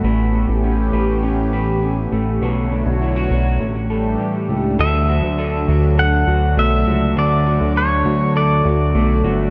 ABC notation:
X:1
M:4/4
L:1/16
Q:1/4=101
K:D
V:1 name="Pedal steel guitar"
z16 | z16 | e8 f4 e4 | d4 c4 d6 z2 |]
V:2 name="Clean electric guitar"
[A,,B]2 A,2 C2 B2 C2 B2 C2 A,2 | [B,,c]2 D2 E F c2 A,,2 A2 G2 A,2 | [D,A]2 F2 A2 F2 A2 F2 A,2 F2 | [D,A]2 F2 A2 F2 A2 F2 A,2 F2 |]
V:3 name="Analog synth pad"
[E,A,B,CG]16 | [D,A,Fc]8 [E,G,A,DG]8 | [F,A,D]16- | [F,A,D]16 |]
V:4 name="Analog synth bass" clef=bass
A,,,3 A,,,3 A,,,8 A,,,2 | B,,,3 B,,,3 B,,,2 A,,,4 z2 C,,2 | D,,3 D,,3 D,,4 D,,2 B,,,2 C,,2 | D,,3 D,,3 D,,4 D,,2 B,,,2 G,,,2 |]